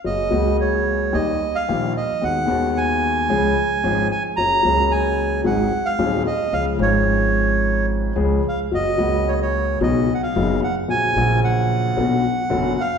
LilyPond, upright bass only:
\new Staff \with { instrumentName = "Upright bass" } { \clef bass \time 4/4 \key fis \major \tempo 4 = 111 fis,,8 cis,4. dis,8 r8 ais,,8 r8 | dis,8 dis,4. cis,8 r8 gis,,8 r8 | fis,,8 cis,4. gis,,8 r8 dis,8 r8 | cis,8 gis,,2~ gis,,8 cis,8 r8 |
fis,,8 cis,4. b,,8 r8 fis,,8 r8 | ais,,8 ais,,4. b,,8 r8 fis,,8 r8 | }